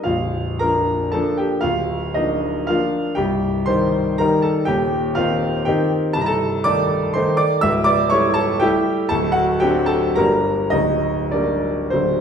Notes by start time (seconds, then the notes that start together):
0.04 A#0 A#1 F4 F5
0.59 F3 A#3 D4 A#4 A#5
1.12 F3 A#3 D4 A4 A5
1.37 G4 G5
1.61 D1 D2 F4 F5
2.14 F3 A#3 D4 D#4 D#5
2.67 F3 A#3 D4 F4 F5
3.15 C1 C2 G4 G5
3.66 D#3 G3 D#4 C5 C6
4.18 D#3 G3 D#4 A#4 A#5
4.42 A4 A5
4.65 D#1 D#2 G4 G5
5.15 D#3 C4 D#4 F4 F5
5.65 D#3 C4 D#4 G4 G5
6.13 C1 C2 A5
6.21 A#5
6.26 A4 A5
6.64 D#3 A3 D#4 D5 D6
7.14 D#3 A3 D#4 C5 C6
7.37 D5 D6
7.61 C#1 C#2 E5 E6
7.84 D5 D6
8.10 G3 A3 E4 C#5 C#6
8.34 A4 A5
8.60 G3 A3 E4 G4 G5
9.09 D1 D2 A4 A5
9.32 F#4 F#5
9.60 F#3 C4 D4 G4 G5
9.86 A4 A5
10.15 G1 G2 G3 A#3 D4 A#4 A#5
10.70 D1 D2 D#4 D#5
11.31 G3 A#3 D4 D5
11.90 D1 D2 F#3 A3 D4 C5